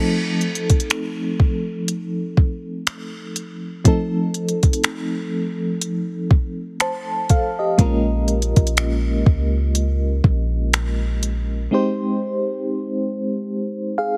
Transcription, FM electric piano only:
0.00 3.81 F3 medium
0.00 3.81 A3 medium
0.00 3.82 C4 medium
0.00 3.82 D#4 medium
0.00 3.82 A4 medium
3.84 7.74 F3 medium
3.84 7.75 A3 medium
3.84 7.75 C4 medium
3.84 7.76 D#4 medium
3.84 6.78 A4 medium
6.81 7.28 C5 medium
6.81 7.27 A5 medium
7.30 7.57 A4 medium
7.30 7.57 F5 medium
7.59 8.06 G4 medium
7.59 8.05 D#5 medium
7.78 11.68 G#3 medium
7.78 11.68 A#3 medium
7.78 7.87 C4 medium
7.78 11.69 F4 medium
7.78 11.69 A#4 medium
7.86 11.72 C#4 medium
11.71 14.17 G#3 medium
11.71 14.17 C4 medium
11.71 13.65 D#4 medium
11.71 13.66 G4 medium
11.71 13.66 C5 medium
13.98 14.17 G#4 medium
13.98 14.17 F5 medium

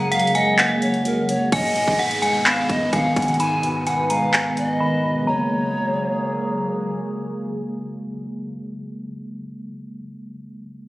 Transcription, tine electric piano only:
0.00 0.82 F#2 loud
0.00 1.29 C#3 medium
0.00 0.35 F#3 loud
0.00 0.36 G#3 medium
0.00 0.59 A#3 loud
0.36 1.53 G#3 medium
0.59 1.52 A#3 loud
1.05 1.52 F#3 medium
1.29 1.52 C#3 medium
1.52 2.69 G#2 medium
1.76 2.93 B2 medium
2.23 3.40 G#3 medium
2.46 3.63 B3 medium
2.93 4.10 D#3 medium
3.17 3.63 B2 medium
3.40 4.57 G#2 medium
3.64 4.81 B2 medium
4.11 5.28 G#3 medium
4.33 5.27 B3 medium
4.81 5.27 D#3 medium
5.04 5.28 B2 medium
5.21 8.43 C#3 medium
5.25 8.47 F#3 medium
5.25 8.51 G#3 medium
5.33 8.55 A#3 medium

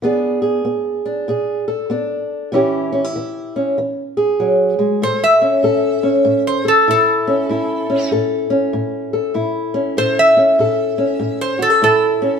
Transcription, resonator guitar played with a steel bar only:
5.03 5.23 C5 medium
5.24 6.43 E5 medium
6.47 6.67 C5 medium
6.68 6.88 A4 medium
6.91 8.09 A4 medium
9.98 10.18 C5 medium
10.19 11.38 E5 medium
11.41 11.61 C5 medium
11.62 11.82 A4 medium
11.84 12.40 A4 medium

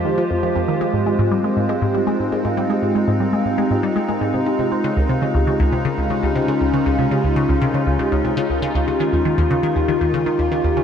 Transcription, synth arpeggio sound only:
0.05 0.09 D#3 medium
0.18 0.22 F3 loud
0.30 0.40 F2 medium
0.43 0.49 F3 loud
0.56 0.59 F2 loud
0.68 0.72 D#3 loud
0.81 0.85 G#3 loud
0.94 1.03 G#2 medium
1.06 1.12 G#3 loud
1.19 1.23 G#2 loud
1.31 1.35 G3 loud
1.44 1.48 G#3 loud
1.57 1.66 G#2 medium
1.69 1.75 G#3 loud
1.82 1.86 G#2 loud
1.94 1.98 G3 loud
2.07 2.11 G#3 loud
2.20 2.29 G#2 medium
2.32 2.38 G#3 loud
2.45 2.49 G#2 loud
2.57 2.61 G3 loud
2.70 2.74 G#3 loud
2.82 2.92 G#2 medium
2.95 3.01 G#3 loud
3.08 3.11 G#2 medium
3.20 3.24 G3 medium
3.33 3.37 G#3 loud
3.46 3.55 G#2 medium
3.58 3.64 G#3 loud
3.71 3.75 G#2 medium
3.83 3.87 G3 loud
3.96 4.00 G#3 loud
4.09 4.12 G#3 medium
4.21 4.31 G#2 loud
4.34 4.40 C3 medium
4.46 4.53 D#4 medium
4.59 4.63 C3 medium
4.72 4.78 C4 medium
4.84 4.91 C#3 loud
4.97 5.01 C#2 medium
5.09 5.13 C3 loud
5.22 5.26 C#3 medium
5.35 5.44 C#2 medium
5.47 5.54 C#3 loud
5.60 5.64 C#2 loud
5.72 5.76 C3 medium
5.85 5.89 C#3 loud
5.98 6.07 C#2 medium
6.10 6.17 C#3 medium
6.23 6.27 C#2 loud
6.36 6.39 C3 medium
6.48 6.52 C#3 loud
6.61 6.70 C#2 medium
6.73 6.80 C#3 loud
6.86 6.90 C#2 loud
6.99 7.02 C3 medium
7.11 7.15 C#3 loud
7.24 7.33 C#2 medium
7.36 7.43 C#3 loud
7.49 7.53 C#2 loud
7.62 7.65 C3 loud
7.74 7.78 C#3 medium
7.87 7.96 C#2 medium
7.99 8.06 C#3 loud
8.12 8.16 C#2 loud
8.24 8.28 C3 loud
8.37 8.41 C#3 loud
8.50 8.59 C#2 medium
8.62 8.69 C#3 loud
8.75 8.79 C#2 loud
8.88 8.91 C#3 medium
9.00 9.04 D#3 loud
9.13 9.22 D#2 medium
9.25 9.32 D#3 loud
9.38 9.42 D#2 loud
9.51 9.54 C#3 loud
9.63 9.67 D#3 loud
9.76 9.85 D#2 medium
9.88 9.95 D#3 loud
10.01 10.05 D#2 loud
10.14 10.17 C#3 loud
10.26 10.30 D#3 loud
10.39 10.48 D#2 medium
10.52 10.58 D#3 loud
10.64 10.68 D#2 loud
10.77 10.80 C#3 loud

